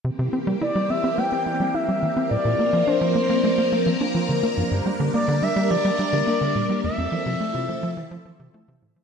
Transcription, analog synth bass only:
\new Staff \with { instrumentName = "Analog synth bass" } { \clef bass \time 4/4 \key c \mixolydian \tempo 4 = 106 c16 c16 c'16 g16 e'16 g16 c'16 c'16 bes16 c'16 c'16 g16 e'16 g16 e16 c'16 | bes,16 bes,16 bes16 f16 d'16 f16 bes16 bes16 a16 bes16 bes16 f16 d'16 f16 d16 bes16 | g,16 g,16 g16 d16 bes16 d16 g16 g16 f16 g16 g16 d16 bes16 d16 bes,16 g16 | f,16 f,16 f16 c16 a16 c16 f16 f16 e16 f16 f16 c16 a16 c16 a,16 f16 | }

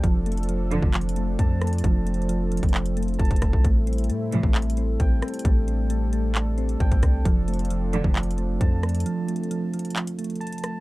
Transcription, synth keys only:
\new Staff \with { instrumentName = "Synth keys" } { \time 4/4 \key f \lydian \tempo 4 = 133 f8 a8 f8 f8 f8 a8 a''8 a8 | f8 a8 f8 f8 f8 a8 a''8 a8 | a8 c'8 a8 a8 a8 c'8 g''8 c'8 | a8 c'8 a8 a8 a8 c'8 g''8 c'8 |
f8 a8 f8 f8 f8 a8 a''8 a8 | f8 a8 f8 f8 f8 a8 a''8 a8 | }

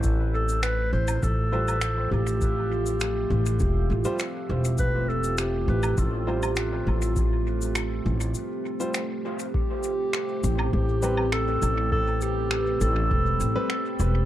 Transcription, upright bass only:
\new Staff \with { instrumentName = "Upright bass" } { \clef bass \time 4/4 \key a \minor \tempo 4 = 101 a,,4. a,,8 a,,4. a,,8~ | a,,4. a,,8 e,,8 a,,8 r8 e,,8~ | e,,4. a,,8 a,,4. a,,8~ | a,,4. a,,8 r2 |
r4. a,,8 a,,4. a,,8~ | a,,4. a,,8 e,,8 a,,8 r8 e,,8 | }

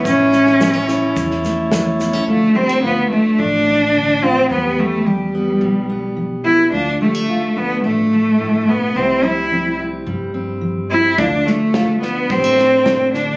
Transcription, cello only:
\new Staff \with { instrumentName = "Cello" } { \time 4/4 \key d \dorian \tempo 4 = 108 cis'2 r2 | a8 c'8 b8 a8 d'4. c'8 | b8 a8 g2 r8 e'8 | d'8 a4 b8 a4. b8 |
c'8 e'4 r2 e'8 | d'8 a4 b8 c'4. d'8 | }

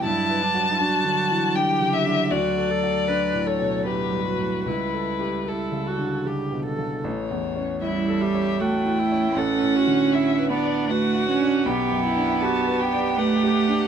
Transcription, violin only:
\new Staff \with { instrumentName = "Violin" } { \time 3/4 \key d \major \tempo 4 = 78 a''2 g''8 e''8 | d''4. cis''8 b'4 | b'4 a'4 r4 | cis''4 e''4 g''4 |
fis''4 e''8 d''8 fis''4 | g''4 a''8 g''8 fis''4 | }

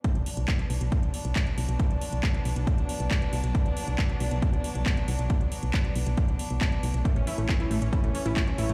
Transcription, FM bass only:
\new Staff \with { instrumentName = "FM bass" } { \clef bass \time 4/4 \key b \minor \tempo 4 = 137 r16 b,,16 r16 b,,16 r8 b,,16 b,,16 r16 b,,16 r16 b,,16 r8 b,,16 b,,16 | r16 b,,16 r16 b,,16 r8 b,,16 b,,16 r16 b,,16 r16 b,,16 r8 b,,16 b,,16 | r16 b,,16 r16 b,,16 r8 b,,16 b,,16 r16 b,,16 r16 b,,16 r8 b,,16 b,,16 | r16 b,,16 r16 b,,16 r8 b,,16 b,,16 r16 b,,16 r16 b,,16 r8 b,,16 b,,16 |
r16 a,,16 r16 a,,16 r8 a,,16 a,,16 r16 a,,16 r16 a,,16 r8 a,,16 a,,16 | }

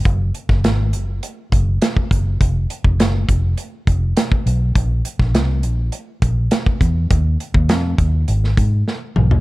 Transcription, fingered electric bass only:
\new Staff \with { instrumentName = "Fingered electric bass" } { \clef bass \time 4/4 \key ges \lydian \tempo 4 = 102 ges,,8 r16 ges,,16 aes,,8 ges,,8 r8 ges,,8 r8 ges,,8 | f,,8 r16 f,,16 ges,,8 f,,8 r8 f,,8 r8 ces,8 | bes,,8 r16 bes,,16 c,8 bes,,8 r8 bes,,8 r8 fes,8 | ees,8 r16 ees,16 f,8 ees,8 aes,,8 aes,8 r8 ces,8 | }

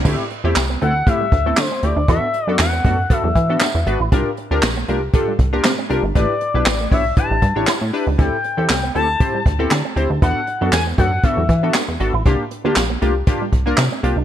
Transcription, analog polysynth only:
\new Staff \with { instrumentName = "Analog polysynth" } { \time 4/4 \key d \mixolydian \tempo 4 = 118 <a c' e' g'>16 r8 <a c' e' g'>16 r8 <a c' e' a'>16 r16 <a c' e' g'>16 r8 <a c' e' a'>16 r8 <a c' e' g'>16 r16 | <b d' fis' a'>16 r8 <b d' fis' a'>16 r8 <b d' fis' a'>16 r16 <b d' fis' a'>16 r8 <b d' fis' a'>16 r8 <b d' fis' b'>16 r16 | <d' f' g' bes'>16 r8 <d' f' g' bes'>16 r8 <d' f' g' bes'>16 r16 <d' f' g' a'>16 r8 <d' f' g' bes'>16 r8 <d' f' g' bes'>16 r16 | <d' e' g' b'>16 r8 <d' e' g' b'>16 r8 <d' e' g' cis''>16 r16 <d' e' g' b'>16 r8 <d' e' g' cis''>16 r8 <d' e' g' b'>16 r16 |
<c' e' g' a'>16 r8 <c' e' g' a'>16 r8 <c' e' g' a'>16 r16 <c' e' g' c''>16 r8 <c' e' g' a'>16 r8 <c' e' g' c''>16 r16 | <b d' fis' a'>16 r8 <b d' fis' a'>16 r8 <b d' fis' a'>16 r16 <b d' fis' a'>16 r8 <b d' fis' a'>16 r8 <b d' fis' a'>16 r16 | <bes d' f' g'>16 r8 <bes d' f' g'>16 r8 <bes d' f' g'>16 r16 <bes d' f' g'>16 r8 <bes d' f' bes'>16 r8 <bes d' f' g'>16 r16 | }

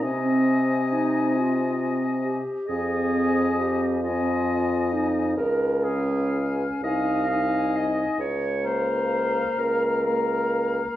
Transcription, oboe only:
\new Staff \with { instrumentName = "Oboe" } { \time 6/8 \key aes \major \tempo 4. = 44 ees''2~ ees''8 r8 | ees''4. ees''4. | r8 f''4 ees''8 ees''4 | r8 f''4. f''4 | }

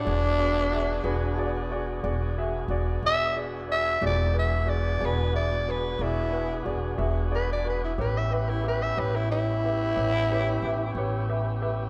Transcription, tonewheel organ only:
\new Staff \with { instrumentName = "Tonewheel organ" } { \time 12/8 \key e \mixolydian \tempo 4. = 61 <b d' fis' gis'>1. | <c' dis' g' a'>8 <b d' fis' gis'>1~ <b d' fis' gis'>4. | <b cis' e' g'>1. | }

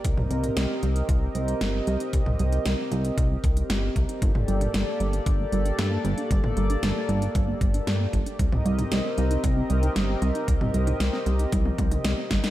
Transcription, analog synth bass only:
\new Staff \with { instrumentName = "Analog synth bass" } { \clef bass \time 4/4 \key c \dorian \tempo 4 = 115 c,16 c,16 c,8 c,16 r16 c,8 c,8 c,8 g,,8 c,16 r16 | c,16 c,16 c,8 c,16 r16 c,8 c,8 c,8 g,,8 c,16 r16 | g,,16 g,,16 g,,8 g,,16 r16 g,,8 g,,8 g,,8 g,8 g,,16 r16 | g,,16 g,,16 g,,8 g,,16 r16 g,,8 g,,8 g,,8 g,8 g,,16 r16 |
c,16 c,16 c,8 c,16 r16 c,8 c,8 c,8 g,,8 c,16 r16 | c,16 c,16 c,8 c,16 r16 c,8 c,8 c,8 c,16 r16 g,,16 r16 | }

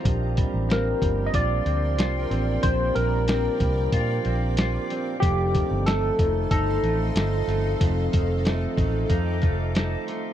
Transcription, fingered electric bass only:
\new Staff \with { instrumentName = "Fingered electric bass" } { \clef bass \time 4/4 \key bes \major \tempo 4 = 93 bes,,8. a,,8. g,,8 bes,,8 d,8 c,8 a,,8 | bes,,8 bes,,4 c,8 bes,8 bes,,4 r8 | f,,8. g,,8. f,,8 g,,8 a,,8 g,,8 g,,8 | f,,8 f,,4 a,,8 f,8 f,,4 r8 | }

